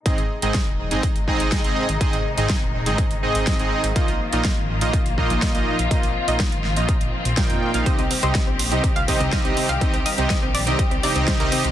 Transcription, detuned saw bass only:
X:1
M:4/4
L:1/16
Q:1/4=123
K:Ablyd
V:1 name="Detuned saw bass" clef=bass
z A,,, z A,,, z E,,,2 A,,, z A,,, z A,,, z A,,, z A,,, | z A,,, z A,,, z E,,,2 A,,, z A,,, z A,,, z A,,, z A,,, | z B,,, z B,,, z A,,,2 B,,, z B,,, z B,,, z B,,, z B,,, | z B,,, z B,,, z A,,,2 B,,, z B,,, z B,,, z F,, z B,,, |
z C,, z C,, z B,,,2 C,, z C,, z C,, z C,, z C,, | z C,, z C,, z B,,,2 C,, z C,, z C,, z C,, z C,, |]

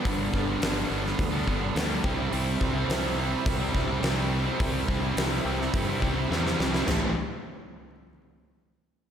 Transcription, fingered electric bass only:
X:1
M:4/4
L:1/8
Q:1/4=105
K:Am
V:1 name="Fingered electric bass" clef=bass
G,,, G,,, G,,, G,,, D,, G,,, D,, C,, | C,, C,, C,,2 C,, C,, C,,2 | C,, C,, C,, C,, G,, C,, E,, C,, | A,,, z6 z |]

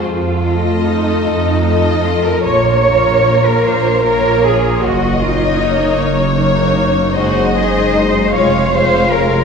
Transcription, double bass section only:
X:1
M:6/8
L:1/8
Q:3/8=51
K:Fphr
V:1 name="Double bass section" clef=bass
F,,3 F,,3 | B,,,3 B,,,3 | G,,,3 G,,,3 | G,,,3 F,,,3 |]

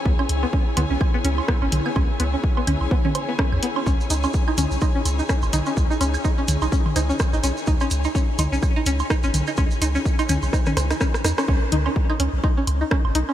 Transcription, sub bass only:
X:1
M:4/4
L:1/16
Q:"Swing 16ths" 1/4=126
K:C#m
V:1 name="Sub bass" clef=bass
C,, z C,, z3 C,, B,,, z2 C,, z2 G,,, B,,, z | C,, z C,, z3 C,, B,,, z4 z E,, z2 | C,, z C,, z3 C,, B,,, z2 C,, z2 G,,, B,,, z | C,, z C,, z3 C,, B,,, z2 C,, z2 G,,, B,,, z |
C,, z C,, z3 C,, B,,, z2 C,, z2 G,,, B,,, z | C,, z C,, z3 C,, B,,, z2 C,, z3 E,, z | C,, z C,, z3 C,, B,,, z2 C,, z2 G,,, B,,, z |]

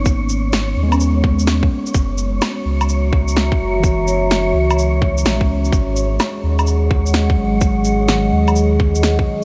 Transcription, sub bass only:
X:1
M:4/4
L:1/8
Q:"Swing 16ths" 1/4=127
K:G#m
V:1 name="Sub bass" clef=bass
G,,,3 D,,4 z | F,,,2 z C,,4 F,,,- | F,,,3 C,,3 A,,, C,, | G,,,2 z D,,4 G,,,- |
G,,,3 D,,4 z |]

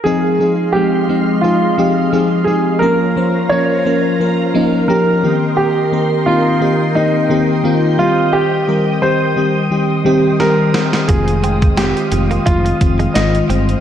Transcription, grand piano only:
X:1
M:4/4
L:1/8
Q:"Swing 16ths" 1/4=87
K:Fm
V:1 name="Grand piano"
A2 G2 F3 A | B2 d2 z2 B2 | G2 F2 E3 F | G2 c2 z2 B2 |
A2 G2 F2 e2 |]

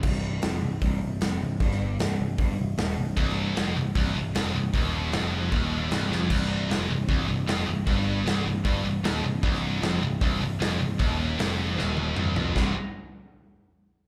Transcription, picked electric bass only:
X:1
M:4/4
L:1/8
Q:1/4=153
K:Cm
V:1 name="Picked electric bass" clef=bass
C,,,2 F,,, C,,, C,,, C,,, F,,, C,,, | G,,,2 C,,, C,,, G,,, C,,, E,,, C,,, | C,,,2 F,,, C,,, C,,, C,,, F,,, C,,, | E,,,2 F,,,2 E,,,2 C,,, F,,, |
C,,,2 F,,, C,,, C,,, C,,, F,,, C,,, | G,,,2 C,,, C,,, G,,, C,,, E,,, C,,, | C,,,2 F,,, C,,, C,,, C,,, F,,, C,,, | E,,,2 F,,,2 E,,,2 C,,, F,,, |
C,,, z6 z |]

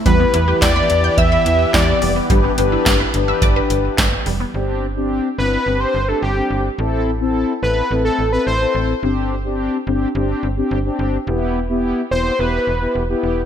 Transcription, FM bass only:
X:1
M:4/4
L:1/16
Q:1/4=107
K:G
V:1 name="FM bass" clef=bass
E,,2 E,,2 E,,2 E,,2 E,,2 E,,2 E,,2 =F,,,2 | G,,,2 G,,,2 G,,,2 G,,,2 G,,,2 G,,,2 G,,,2 =F,,,2 | G,,,4- G,,, z G,,,2 G,,,2 G,,,2 G,,,2 G,,,2 | A,,,4- A,,, z A,,,2 A,,,2 A,,,2 A,,,2 A,,,2 |
G,,,4- G,,, z G,,,2 G,,,2 G,,,2 G,,,2 G,,,2 | E,,,4- E,,, z E,,,2 E,,,2 E,,,2 E,,,2 E,,,2 |]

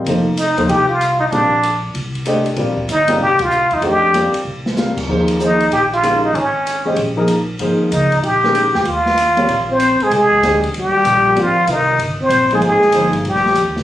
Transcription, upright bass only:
X:1
M:4/4
L:1/8
Q:"Swing" 1/4=191
K:Eblyd
V:1 name="Upright bass" clef=bass
F,,,3 E,, C,,4 | B,,,4 C,,4 | B,,,2 G,,,2 C,,3 =E,, | F,,3 z C,,4 |
E,,4 B,,,4 | _A,,,3 =E,, B,,,4 | _A,,,2 _D,,2 B,,,3 =E,, | E,,4 B,,,3 z |
[K:Ablyd] C,, z D,,2 E,,2 B,,,2 | A,,,2 C,,2 G,,,2 B,,,2 | A,,,2 G,,,2 B,,,2 (3F,, E,, C,, |]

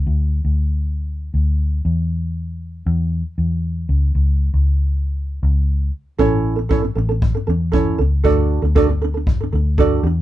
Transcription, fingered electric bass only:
X:1
M:4/4
L:1/16
Q:1/4=117
K:Dlyd
V:1 name="Fingered electric bass" clef=bass
D,,3 D,,6- D,, D,,4 E,,2- | E,,6 E,,3 z E,,4 C,,2 | C,,3 C,,6- C,, C,,4 z2 | A,,,6 A,,,3 z E,,4 C,,2 |
D,,3 D,,6- D,, D,,4 E,,2 |]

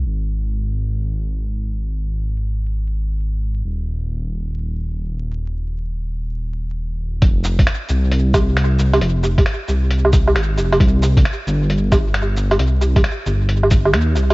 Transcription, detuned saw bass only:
X:1
M:4/4
L:1/8
Q:"Swing 16ths" 1/4=134
K:Fm
V:1 name="Detuned saw bass" clef=bass
A,,,8- | A,,,8 | E,,,8- | E,,,8 |
F,,,2 z C,,4 C,, | F,,,2 z C,,3 A,,, F,,, | C,,2 z G,,,4 G,,, | C,,2 z G,,,3 E,, C,, |]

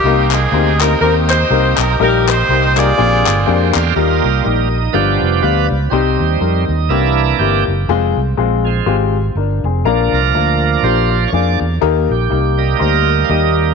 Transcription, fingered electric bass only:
X:1
M:4/4
L:1/8
Q:"Swing" 1/4=122
K:Eb
V:1 name="Fingered electric bass" clef=bass
C,,2 D,,2 E,,2 C,, _C,, | B,,,2 C,,2 B,,, G,,, F,, _F,, | E,, C,, B,,,2 G,,, F,,, D,, _D,, | C,, E,, F,, E,, C,,2 G,,, _G,,, |
F,,, C,, B,,,2 A,,,2 G,,, F,,, | B,,, C,, D,,2 B,,,2 F,, _F,, | E,, B,,, C,,2 D,,2 E,,2 |]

